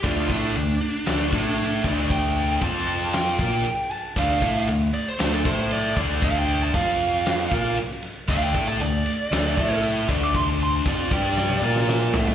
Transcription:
<<
  \new Staff \with { instrumentName = "Lead electric guitar" } { \time 4/4 \key d \minor \tempo 4 = 116 f'8 d'2. r8 | g''4 a''4 g''4. a''8 | f''4 r8 d''16 c''8 a'16 c''8 d''8 r8 | f''16 g''8 a''16 f''2 r4 |
f''16 g''8 a''16 d''2 r8. d'''16 | c'''16 a''16 c'''16 a''16 d''2 r4 | }
  \new Staff \with { instrumentName = "Overdriven electric guitar" } { \time 4/4 \key d \minor <d a d'>8 <a e' a'>8 <d a>8 r8 <d a d'>8 <a e' a'>4 <d a d'>8~ | <d a d'>4 <f c' f'>4. <bes f' bes'>8 r4 | <d a d'>8 <a e' a'>8 <d a>8 r8 <d a d'>8 <a e' a'>4 <d a d'>8~ | <d a d'>4 <f c' f'>4. <bes f' bes'>8 r4 |
<d a d'>8 <a e' a'>8 <d a>8 r8 <d a d'>8 <a e' a'>4 <d a d'>8~ | <d a d'>4 <f c' f'>8 <g d' g'>4 <bes f' bes'>4 <a e' a'>8 | }
  \new Staff \with { instrumentName = "Fingered electric bass" } { \clef bass \time 4/4 \key d \minor d,8 a,8 d,8 r8 d,8 a,4 d,8~ | d,4 f,4. bes,8 r4 | d,8 a,8 d,8 r8 d,8 a,4 d,8~ | d,4 f,4. bes,8 r4 |
d,8 a,8 d,8 r8 d,8 a,4 d,8~ | d,4 f,8 g,4 bes,4 a,8 | }
  \new DrumStaff \with { instrumentName = "Drums" } \drummode { \time 4/4 <cymc bd>8 <bd cymr>8 cymr8 cymr8 <cymr sn>8 <bd cymr>8 cymr8 <cymc bd>8 | bd8 cymr8 <bd cymr>8 cymr8 <cymr sn>8 <bd cymr>8 cymr8 cymr8 | <cymc bd>8 <bd cymr>8 cymr8 cymr8 <cymr sn>8 <bd cymr>8 cymr8 <bd cymr>8 | <bd cymr>8 cymr8 <bd cymr>8 cymr8 <cymr sn>8 <bd cymr>8 cymr16 sn16 cymr8 |
<cymc bd>8 <bd cymr>8 cymr8 cymr8 <cymr sn>8 <bd cymr>8 cymr8 <cymc bd>8 | bd8 cymr8 <bd cymr>8 <bd cymr>8 sn16 tommh8 sn16 sn8 tomfh16 tomfh16 | }
>>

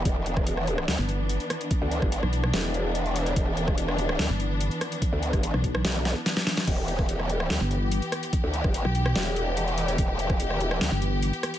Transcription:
<<
  \new Staff \with { instrumentName = "String section" } { \time 4/4 \key e \minor \tempo 4 = 145 << { d'1~ | d'1~ | d'1~ | d'1 |
g'1~ | g'1~ | g'1 | } \\ { <e b>1~ | <e b>1~ | <e b>1~ | <e b>1~ |
<e b>1~ | <e b>1~ | <e b>1 | } >> }
  \new Staff \with { instrumentName = "Wobble bass" } { \clef bass \time 4/4 \key e \minor e,,4 e,,4 d,16 r4. r16 | r16 d,8 g,,8 r8. e,,2 | e,,4 e,,4 d,16 r4. r16 | r16 d,8 g,,8 r8. b,,8. r4 r16 |
e,,4 e,,4 d,16 r4. r16 | r16 d,8 g,,8 r8. e,,2 | e,,4 e,,4 d,16 r4. r16 | }
  \new Staff \with { instrumentName = "Wobble bass" } { \clef bass \time 4/4 \key e \minor r2 r16 g,,4 r8. | r4 r16 b,,8. r2 | r2 r16 g,,4 r8. | r4 r16 b,,8. r2 |
r2 r16 g,,4 r8. | r4 r16 b,,8. r2 | r2 r16 g,,4 r8. | }
  \new DrumStaff \with { instrumentName = "Drums" } \drummode { \time 4/4 <hh bd>8 hh16 <bd ss>16 hh16 ss16 hh16 ss16 <hh sn>8 hh8 hh16 hh16 <hho ss>16 hh16 | <hh bd>8 hh16 <bd ss>16 hh16 ss16 hh16 ss16 <hh sn>8 hh8 hh16 hh16 hho16 hh16 | <hh bd>8 hh16 <bd ss>16 hh16 ss16 hh16 ss16 <hh sn>8 hh8 hh16 hh16 <hho ss>16 hh16 | <hh bd>8 hh16 <hh bd ss>16 hh16 ss16 <hh bd>16 ss16 <hh sn>8 <hh sn>8 <hh sn>16 <hh sn>16 <hho sn>16 <hh sn>16 |
<cymc hh bd>8 hh16 <bd ss>16 hh16 ss16 hh16 ss16 <hh sn>8 hh8 hh16 hh16 <hho ss>16 hh16 | <hh bd>8 hh16 <bd ss>16 hh16 ss16 hh16 ss16 <hh sn>8 hh8 hh16 hh16 hho16 hh16 | <hh bd>8 hh16 <bd ss>16 hh16 ss16 hh16 ss16 <hh sn>8 hh8 hh16 hh16 <hho ss>16 hh16 | }
>>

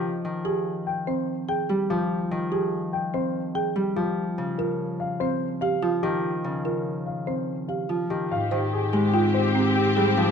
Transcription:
<<
  \new Staff \with { instrumentName = "Grand piano" } { \time 5/4 \key ees \mixolydian \tempo 4 = 145 r4 aes'8 r8 g''8 c''8 r8 g''8 r8 g'8 | r4 aes'8 r8 g''8 c''8 r8 g''8 r8 g'8 | r4 bes'8 r8 f''8 c''8 r8 f''8 r8 g'8 | r4 bes'8 r8 f''8 c''8 r8 f''8 r8 g'8 |
\key aes \major f''8 r8 aes'8 r8 g''8 c''8 r8 g''8 r8 g'8 | }
  \new Staff \with { instrumentName = "Alto flute" } { \time 5/4 \key ees \mixolydian r1 r4 | r1 r4 | r1 r4 | r1 r4 |
\key aes \major g'8 g'8 g'8 g'8 g'8 g'8 g'8 g'8 g'8 g'8 | }
  \new Staff \with { instrumentName = "Marimba" } { \time 5/4 \key ees \mixolydian r4 g'8 r4 c'8 r8 aes'8 g'8 r8 | r4 g'8 r4 c'8 r8 aes'8 g'8 r8 | r4 f'8 r4 c'8 r8 g'8 f'8 r8 | r4 f'8 r4 c'8 r8 g'8 f'8 r8 |
\key aes \major r8 c''8 r8 g'8 f'8 r8 c'8 r8 aes'8 g'8 | }
  \new Staff \with { instrumentName = "String section" } { \time 5/4 \key ees \mixolydian r1 r4 | r1 r4 | r1 r4 | r1 r4 |
\key aes \major <c' g'>1~ <c' g'>4 | }
  \new Staff \with { instrumentName = "Harp" } { \clef bass \time 5/4 \key ees \mixolydian f8 ees2.~ ees8 g8 f8~ | f8 ees2.~ ees8 g8 f8~ | f8 des2.~ des8 f8 ees8~ | ees8 des2.~ des8 f8 ees8 |
\key aes \major r8 ees4 aes2~ aes8 g8 f8 | }
  \new Staff \with { instrumentName = "Bass clarinet" } { \clef bass \time 5/4 \key ees \mixolydian r1 r4 | r1 r4 | r1 r4 | r1 r4 |
\key aes \major aes,1~ aes,4 | }
>>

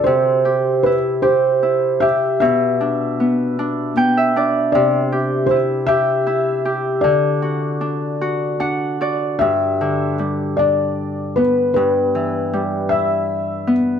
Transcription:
<<
  \new Staff \with { instrumentName = "Felt piano" } { \time 6/8 \key g \major \tempo 4. = 51 c''4 b'8 c''4 e''8 | e''2 r4 | d''4 c''8 e''4. | d''2 r4 |
e''4 r8 d''4 b'8 | b'4. e''4 r8 | }
  \new Staff \with { instrumentName = "Harp" } { \time 6/8 \key g \major << { r2. | r2 g''16 e''16 d''8 | r2. | r2 fis''8 d''8 |
r2. | r2. | } \\ { c8 g'8 e'8 g'8 e'8 g'8 | b,8 d'8 b8 d'8 b8 d'8 | c8 g'8 e'8 g'8 e'8 g'8 | d8 fis'8 d'8 fis'8 d'8 fis'8 |
g,8 d8 g8 d'4 b8 | g,8 e8 g8 e'4 b8 | } >> }
>>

